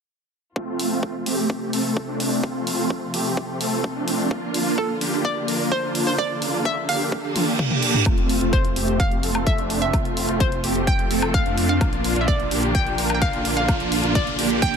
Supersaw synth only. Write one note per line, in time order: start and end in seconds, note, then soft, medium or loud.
0.56 0.88 A3 medium
0.56 0.88 C4 medium
0.56 0.88 F4 medium
0.91 1.14 A3 medium
0.91 1.14 C4 medium
0.91 1.14 F4 loud
1.26 1.70 A3 medium
1.26 1.70 C4 medium
1.26 1.70 G4 medium
1.73 2.06 A3 medium
1.73 2.06 C4 medium
1.73 2.06 A4 medium
2.08 2.41 A3 medium
2.08 2.41 C4 medium
2.08 2.41 D4 loud
2.43 2.76 A3 medium
2.43 2.76 C4 medium
2.43 2.76 F4 medium
2.79 3.02 A3 loud
2.79 3.02 C4 medium
2.79 3.02 F4 loud
3.14 3.58 A3 medium
3.14 3.58 C4 medium
3.14 3.58 G4 medium
3.61 3.93 A3 medium
3.61 3.93 C4 medium
3.61 3.93 A4 medium
3.96 4.28 A3 medium
3.96 4.28 C4 medium
3.96 4.28 D4 loud
4.31 4.63 A#3 medium
4.31 4.63 D4 medium
4.31 4.63 F4 medium
4.66 4.89 A#3 medium
4.66 4.89 D4 medium
4.66 4.89 F4 loud
5.01 5.45 A#3 medium
5.01 5.45 D4 medium
5.01 5.45 G4 medium
5.48 5.81 A#3 medium
5.48 5.80 D4 medium
5.48 5.81 A#4 medium
5.83 6.16 A#3 medium
5.83 6.16 D4 medium
5.83 6.16 F4 loud
6.18 6.51 A#3 medium
6.18 6.51 D4 medium
6.18 6.51 F4 medium
6.54 6.77 A#3 loud
6.54 6.77 D4 medium
6.54 6.77 F4 loud
6.89 7.33 A#3 medium
6.89 7.33 D4 medium
6.89 7.33 G4 medium
7.36 7.45 A#3 medium
7.36 7.45 D4 medium
7.36 7.45 F4 medium
7.47 7.68 A#3 medium
7.47 7.68 D4 medium
7.47 7.68 G4 medium
7.71 8.03 A#3 medium
7.71 8.03 D4 medium
7.71 8.03 G4 loud
8.06 8.38 A3 medium
8.06 8.38 C4 medium
8.06 8.38 F4 medium
8.41 8.64 A3 loud
8.41 8.64 C4 medium
8.41 8.64 F4 loud
8.76 9.20 A3 medium
8.76 9.20 C4 medium
8.76 9.20 G4 medium
9.23 9.55 A3 medium
9.23 9.55 C4 medium
9.23 9.55 A4 medium
9.58 9.91 A3 medium
9.58 9.91 C4 medium
9.58 9.91 D4 loud
9.93 10.26 A3 medium
9.93 10.26 C4 medium
9.93 10.26 F4 medium
10.29 10.52 A3 loud
10.29 10.52 C4 loud
10.29 10.52 F4 loud
10.64 11.08 A3 medium
10.64 11.08 C4 medium
10.64 11.08 G4 medium
11.11 11.43 A3 medium
11.11 11.43 C4 medium
11.11 11.43 A4 medium
11.46 11.78 A3 loud
11.46 11.78 C4 medium
11.46 11.78 D4 loud
11.81 12.13 A#3 medium
11.81 12.13 D4 medium
11.81 12.13 F4 medium
12.16 12.39 A#3 loud
12.16 12.39 D4 medium
12.16 12.39 F4 loud
12.51 12.95 A#3 medium
12.51 12.95 D4 medium
12.51 12.95 G4 medium
12.98 13.31 A#3 medium
12.98 13.31 D4 medium
12.98 13.31 A#4 medium
13.33 13.66 A#3 medium
13.33 13.66 D4 medium
13.33 13.66 F4 loud
13.68 14.01 A#3 medium
13.68 14.01 D4 medium
13.68 14.01 F4 medium
14.04 14.27 A#3 loud
14.04 14.27 D4 medium
14.04 14.27 F4 loud
14.39 14.77 A#3 medium
14.39 14.77 D4 medium
14.39 14.77 G4 medium